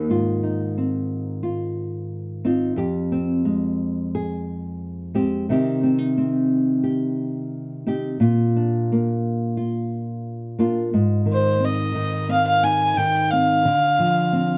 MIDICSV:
0, 0, Header, 1, 3, 480
1, 0, Start_track
1, 0, Tempo, 679502
1, 45, Time_signature, 4, 2, 24, 8
1, 10298, End_track
2, 0, Start_track
2, 0, Title_t, "Violin"
2, 0, Program_c, 0, 40
2, 8002, Note_on_c, 0, 72, 66
2, 8230, Note_on_c, 0, 75, 68
2, 8241, Note_off_c, 0, 72, 0
2, 8696, Note_off_c, 0, 75, 0
2, 8699, Note_on_c, 0, 77, 73
2, 8802, Note_off_c, 0, 77, 0
2, 8809, Note_on_c, 0, 77, 81
2, 8928, Note_on_c, 0, 80, 78
2, 8939, Note_off_c, 0, 77, 0
2, 9165, Note_on_c, 0, 79, 78
2, 9175, Note_off_c, 0, 80, 0
2, 9406, Note_on_c, 0, 77, 75
2, 9417, Note_off_c, 0, 79, 0
2, 10298, Note_off_c, 0, 77, 0
2, 10298, End_track
3, 0, Start_track
3, 0, Title_t, "Nylon-string guitar"
3, 0, Program_c, 1, 24
3, 0, Note_on_c, 1, 51, 60
3, 67, Note_on_c, 1, 44, 54
3, 74, Note_on_c, 1, 65, 53
3, 306, Note_on_c, 1, 63, 40
3, 549, Note_on_c, 1, 60, 44
3, 1007, Note_off_c, 1, 65, 0
3, 1010, Note_on_c, 1, 65, 47
3, 1720, Note_off_c, 1, 63, 0
3, 1725, Note_off_c, 1, 60, 0
3, 1725, Note_off_c, 1, 65, 0
3, 1728, Note_on_c, 1, 60, 46
3, 1731, Note_on_c, 1, 63, 45
3, 1738, Note_on_c, 1, 65, 46
3, 1936, Note_off_c, 1, 63, 0
3, 1944, Note_off_c, 1, 44, 0
3, 1952, Note_on_c, 1, 41, 58
3, 1959, Note_off_c, 1, 65, 0
3, 1962, Note_on_c, 1, 67, 56
3, 1966, Note_off_c, 1, 51, 0
3, 2203, Note_off_c, 1, 60, 0
3, 2203, Note_on_c, 1, 60, 43
3, 2437, Note_on_c, 1, 56, 50
3, 2927, Note_off_c, 1, 67, 0
3, 2930, Note_on_c, 1, 68, 46
3, 3626, Note_off_c, 1, 56, 0
3, 3628, Note_off_c, 1, 60, 0
3, 3634, Note_on_c, 1, 56, 43
3, 3638, Note_off_c, 1, 68, 0
3, 3639, Note_on_c, 1, 60, 47
3, 3641, Note_on_c, 1, 67, 49
3, 3852, Note_off_c, 1, 67, 0
3, 3875, Note_off_c, 1, 41, 0
3, 3877, Note_off_c, 1, 56, 0
3, 3878, Note_off_c, 1, 60, 0
3, 3880, Note_on_c, 1, 48, 56
3, 3885, Note_on_c, 1, 51, 51
3, 3890, Note_on_c, 1, 63, 49
3, 3891, Note_on_c, 1, 60, 54
3, 3901, Note_on_c, 1, 67, 56
3, 4111, Note_off_c, 1, 60, 0
3, 4117, Note_off_c, 1, 63, 0
3, 4120, Note_on_c, 1, 60, 41
3, 4228, Note_off_c, 1, 60, 0
3, 4228, Note_on_c, 1, 63, 37
3, 4363, Note_on_c, 1, 60, 49
3, 4819, Note_off_c, 1, 67, 0
3, 4828, Note_on_c, 1, 67, 47
3, 5548, Note_off_c, 1, 60, 0
3, 5551, Note_off_c, 1, 63, 0
3, 5554, Note_off_c, 1, 67, 0
3, 5556, Note_on_c, 1, 60, 42
3, 5559, Note_on_c, 1, 63, 43
3, 5566, Note_on_c, 1, 67, 47
3, 5769, Note_off_c, 1, 60, 0
3, 5771, Note_off_c, 1, 48, 0
3, 5771, Note_off_c, 1, 63, 0
3, 5774, Note_off_c, 1, 67, 0
3, 5792, Note_on_c, 1, 46, 57
3, 5803, Note_off_c, 1, 51, 0
3, 5803, Note_on_c, 1, 65, 53
3, 6049, Note_on_c, 1, 62, 45
3, 6302, Note_on_c, 1, 58, 45
3, 6753, Note_off_c, 1, 65, 0
3, 6761, Note_on_c, 1, 65, 43
3, 7470, Note_off_c, 1, 58, 0
3, 7475, Note_off_c, 1, 62, 0
3, 7476, Note_off_c, 1, 65, 0
3, 7478, Note_on_c, 1, 58, 42
3, 7484, Note_on_c, 1, 62, 46
3, 7485, Note_on_c, 1, 65, 47
3, 7691, Note_off_c, 1, 58, 0
3, 7694, Note_off_c, 1, 62, 0
3, 7717, Note_off_c, 1, 46, 0
3, 7725, Note_on_c, 1, 44, 62
3, 7952, Note_on_c, 1, 51, 48
3, 8195, Note_on_c, 1, 60, 48
3, 8433, Note_off_c, 1, 51, 0
3, 8442, Note_on_c, 1, 51, 52
3, 8678, Note_off_c, 1, 60, 0
3, 8681, Note_on_c, 1, 60, 50
3, 8926, Note_on_c, 1, 63, 43
3, 9158, Note_off_c, 1, 51, 0
3, 9166, Note_on_c, 1, 51, 52
3, 9412, Note_off_c, 1, 60, 0
3, 9415, Note_on_c, 1, 60, 47
3, 9614, Note_off_c, 1, 44, 0
3, 9614, Note_off_c, 1, 63, 0
3, 9643, Note_off_c, 1, 51, 0
3, 9643, Note_off_c, 1, 65, 0
3, 9644, Note_on_c, 1, 50, 67
3, 9665, Note_off_c, 1, 60, 0
3, 9883, Note_on_c, 1, 53, 48
3, 10123, Note_on_c, 1, 60, 51
3, 10298, Note_off_c, 1, 50, 0
3, 10298, Note_off_c, 1, 53, 0
3, 10298, Note_off_c, 1, 60, 0
3, 10298, End_track
0, 0, End_of_file